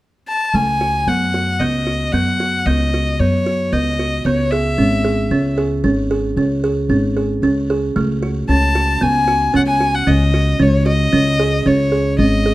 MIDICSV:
0, 0, Header, 1, 4, 480
1, 0, Start_track
1, 0, Tempo, 529568
1, 488, Time_signature, 7, 2, 24, 8
1, 11369, End_track
2, 0, Start_track
2, 0, Title_t, "Violin"
2, 0, Program_c, 0, 40
2, 257, Note_on_c, 0, 81, 73
2, 499, Note_on_c, 0, 80, 74
2, 513, Note_off_c, 0, 81, 0
2, 974, Note_on_c, 0, 78, 74
2, 988, Note_off_c, 0, 80, 0
2, 1449, Note_on_c, 0, 75, 71
2, 1463, Note_off_c, 0, 78, 0
2, 1922, Note_on_c, 0, 78, 73
2, 1936, Note_off_c, 0, 75, 0
2, 2411, Note_on_c, 0, 75, 69
2, 2425, Note_off_c, 0, 78, 0
2, 2893, Note_on_c, 0, 73, 67
2, 2906, Note_off_c, 0, 75, 0
2, 3378, Note_on_c, 0, 75, 64
2, 3391, Note_off_c, 0, 73, 0
2, 3854, Note_on_c, 0, 73, 65
2, 3867, Note_off_c, 0, 75, 0
2, 4088, Note_on_c, 0, 76, 67
2, 4102, Note_off_c, 0, 73, 0
2, 5051, Note_off_c, 0, 76, 0
2, 7699, Note_on_c, 0, 81, 81
2, 8179, Note_on_c, 0, 80, 83
2, 8192, Note_off_c, 0, 81, 0
2, 8655, Note_off_c, 0, 80, 0
2, 8663, Note_on_c, 0, 78, 80
2, 8714, Note_off_c, 0, 78, 0
2, 8765, Note_on_c, 0, 80, 75
2, 9015, Note_on_c, 0, 78, 73
2, 9028, Note_off_c, 0, 80, 0
2, 9128, Note_on_c, 0, 75, 73
2, 9142, Note_off_c, 0, 78, 0
2, 9625, Note_on_c, 0, 73, 69
2, 9638, Note_off_c, 0, 75, 0
2, 9853, Note_off_c, 0, 73, 0
2, 9858, Note_on_c, 0, 75, 81
2, 10579, Note_on_c, 0, 73, 68
2, 10592, Note_off_c, 0, 75, 0
2, 11044, Note_off_c, 0, 73, 0
2, 11050, Note_on_c, 0, 75, 69
2, 11369, Note_off_c, 0, 75, 0
2, 11369, End_track
3, 0, Start_track
3, 0, Title_t, "Kalimba"
3, 0, Program_c, 1, 108
3, 493, Note_on_c, 1, 57, 56
3, 675, Note_off_c, 1, 57, 0
3, 734, Note_on_c, 1, 66, 53
3, 916, Note_off_c, 1, 66, 0
3, 975, Note_on_c, 1, 59, 54
3, 1157, Note_off_c, 1, 59, 0
3, 1216, Note_on_c, 1, 66, 58
3, 1397, Note_off_c, 1, 66, 0
3, 1456, Note_on_c, 1, 59, 55
3, 1638, Note_off_c, 1, 59, 0
3, 1691, Note_on_c, 1, 66, 53
3, 1875, Note_off_c, 1, 66, 0
3, 1938, Note_on_c, 1, 59, 60
3, 2119, Note_off_c, 1, 59, 0
3, 2175, Note_on_c, 1, 66, 54
3, 2358, Note_off_c, 1, 66, 0
3, 2422, Note_on_c, 1, 59, 56
3, 2602, Note_off_c, 1, 59, 0
3, 2663, Note_on_c, 1, 66, 53
3, 2843, Note_off_c, 1, 66, 0
3, 2905, Note_on_c, 1, 59, 55
3, 3084, Note_off_c, 1, 59, 0
3, 3140, Note_on_c, 1, 66, 56
3, 3321, Note_off_c, 1, 66, 0
3, 3379, Note_on_c, 1, 59, 55
3, 3561, Note_off_c, 1, 59, 0
3, 3619, Note_on_c, 1, 66, 58
3, 3801, Note_off_c, 1, 66, 0
3, 3862, Note_on_c, 1, 59, 65
3, 4042, Note_off_c, 1, 59, 0
3, 4100, Note_on_c, 1, 68, 57
3, 4281, Note_off_c, 1, 68, 0
3, 4334, Note_on_c, 1, 61, 56
3, 4518, Note_off_c, 1, 61, 0
3, 4573, Note_on_c, 1, 68, 55
3, 4757, Note_off_c, 1, 68, 0
3, 4814, Note_on_c, 1, 61, 57
3, 4998, Note_off_c, 1, 61, 0
3, 5054, Note_on_c, 1, 68, 59
3, 5238, Note_off_c, 1, 68, 0
3, 5292, Note_on_c, 1, 61, 66
3, 5476, Note_off_c, 1, 61, 0
3, 5536, Note_on_c, 1, 68, 59
3, 5719, Note_off_c, 1, 68, 0
3, 5777, Note_on_c, 1, 61, 59
3, 5959, Note_off_c, 1, 61, 0
3, 6016, Note_on_c, 1, 68, 61
3, 6199, Note_off_c, 1, 68, 0
3, 6250, Note_on_c, 1, 61, 58
3, 6435, Note_off_c, 1, 61, 0
3, 6495, Note_on_c, 1, 68, 54
3, 6678, Note_off_c, 1, 68, 0
3, 6736, Note_on_c, 1, 61, 64
3, 6919, Note_off_c, 1, 61, 0
3, 6980, Note_on_c, 1, 68, 60
3, 7161, Note_off_c, 1, 68, 0
3, 7214, Note_on_c, 1, 57, 66
3, 7397, Note_off_c, 1, 57, 0
3, 7455, Note_on_c, 1, 66, 59
3, 7638, Note_off_c, 1, 66, 0
3, 7694, Note_on_c, 1, 61, 60
3, 7877, Note_off_c, 1, 61, 0
3, 7934, Note_on_c, 1, 66, 62
3, 8117, Note_off_c, 1, 66, 0
3, 8168, Note_on_c, 1, 59, 62
3, 8353, Note_off_c, 1, 59, 0
3, 8409, Note_on_c, 1, 66, 59
3, 8593, Note_off_c, 1, 66, 0
3, 8645, Note_on_c, 1, 61, 69
3, 8831, Note_off_c, 1, 61, 0
3, 8886, Note_on_c, 1, 66, 56
3, 9071, Note_off_c, 1, 66, 0
3, 9125, Note_on_c, 1, 61, 62
3, 9310, Note_off_c, 1, 61, 0
3, 9370, Note_on_c, 1, 66, 60
3, 9553, Note_off_c, 1, 66, 0
3, 9604, Note_on_c, 1, 61, 64
3, 9789, Note_off_c, 1, 61, 0
3, 9843, Note_on_c, 1, 66, 62
3, 10029, Note_off_c, 1, 66, 0
3, 10085, Note_on_c, 1, 61, 64
3, 10270, Note_off_c, 1, 61, 0
3, 10328, Note_on_c, 1, 68, 63
3, 10512, Note_off_c, 1, 68, 0
3, 10568, Note_on_c, 1, 61, 63
3, 10751, Note_off_c, 1, 61, 0
3, 10804, Note_on_c, 1, 68, 58
3, 10988, Note_off_c, 1, 68, 0
3, 11046, Note_on_c, 1, 61, 52
3, 11229, Note_off_c, 1, 61, 0
3, 11291, Note_on_c, 1, 68, 61
3, 11369, Note_off_c, 1, 68, 0
3, 11369, End_track
4, 0, Start_track
4, 0, Title_t, "Upright bass"
4, 0, Program_c, 2, 32
4, 487, Note_on_c, 2, 37, 74
4, 937, Note_off_c, 2, 37, 0
4, 965, Note_on_c, 2, 42, 65
4, 1416, Note_off_c, 2, 42, 0
4, 1448, Note_on_c, 2, 37, 66
4, 1898, Note_off_c, 2, 37, 0
4, 1931, Note_on_c, 2, 42, 61
4, 2380, Note_off_c, 2, 42, 0
4, 2410, Note_on_c, 2, 37, 71
4, 2860, Note_off_c, 2, 37, 0
4, 2896, Note_on_c, 2, 42, 68
4, 3343, Note_off_c, 2, 42, 0
4, 3374, Note_on_c, 2, 37, 71
4, 3822, Note_off_c, 2, 37, 0
4, 3852, Note_on_c, 2, 37, 75
4, 4301, Note_off_c, 2, 37, 0
4, 4330, Note_on_c, 2, 32, 76
4, 4780, Note_off_c, 2, 32, 0
4, 4812, Note_on_c, 2, 37, 70
4, 5261, Note_off_c, 2, 37, 0
4, 5292, Note_on_c, 2, 32, 61
4, 5741, Note_off_c, 2, 32, 0
4, 5769, Note_on_c, 2, 37, 68
4, 6219, Note_off_c, 2, 37, 0
4, 6246, Note_on_c, 2, 32, 73
4, 6698, Note_off_c, 2, 32, 0
4, 6727, Note_on_c, 2, 37, 69
4, 7178, Note_off_c, 2, 37, 0
4, 7214, Note_on_c, 2, 37, 74
4, 7661, Note_off_c, 2, 37, 0
4, 7691, Note_on_c, 2, 37, 76
4, 8140, Note_off_c, 2, 37, 0
4, 8172, Note_on_c, 2, 37, 71
4, 8620, Note_off_c, 2, 37, 0
4, 8646, Note_on_c, 2, 37, 63
4, 9096, Note_off_c, 2, 37, 0
4, 9128, Note_on_c, 2, 37, 74
4, 9577, Note_off_c, 2, 37, 0
4, 9606, Note_on_c, 2, 37, 73
4, 10055, Note_off_c, 2, 37, 0
4, 10087, Note_on_c, 2, 37, 76
4, 10535, Note_off_c, 2, 37, 0
4, 10566, Note_on_c, 2, 37, 76
4, 11014, Note_off_c, 2, 37, 0
4, 11044, Note_on_c, 2, 32, 78
4, 11369, Note_off_c, 2, 32, 0
4, 11369, End_track
0, 0, End_of_file